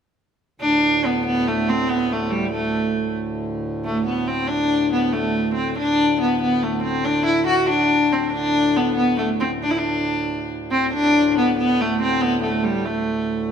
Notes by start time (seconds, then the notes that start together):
0.60 D2 A2 D4
1.05 B3
1.26 B3
1.48 A3
1.69 C4
1.89 B3
2.12 A3
2.30 G3
2.52 A3
3.85 A3
4.06 B3
4.28 C4
4.48 D4
4.93 B3
5.13 A3
5.54 C4
5.76 D2 A2 D4
6.21 B3
6.42 B3
6.63 A3
6.83 C4
7.05 D4
7.25 E4
7.47 F#4
7.69 D4
8.12 C4
8.33 D4
8.77 B3
8.95 B3
9.18 A3
9.40 C4
9.63 D4
9.71 E4
9.78 D4
10.71 C4
10.92 D2 A2 D4
11.38 B3
11.58 B3
11.81 A3
12.02 C4
12.21 B3
12.43 A3
12.64 G3
12.85 A3